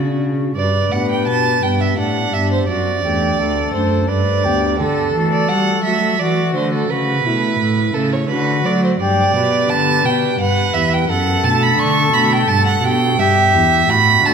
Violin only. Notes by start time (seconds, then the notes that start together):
Already playing: F#4
0.56 D5
0.92 F#5
1.11 G5
1.27 A5
1.63 G5
1.81 E5
1.98 F#5
2.34 E5
2.52 C5
2.68 D5
3.74 C5
4.09 D5
4.79 A4
5.32 D5
5.48 F#5
5.84 E5
6.19 D5
6.54 C5
6.73 A4
6.89 B4
7.94 A4
8.13 C#5
8.29 B4
8.66 D5
8.84 C5
9.00 D5
9.70 A5
10.05 G5
10.40 F#5
10.74 E5
10.94 G5
11.09 F#5
11.44 A5
11.62 B5
11.79 C#6
12.13 B5
12.32 G5
12.48 A5
12.66 F#5
12.84 G5
13.20 E5
13.89 B5
14.25 A5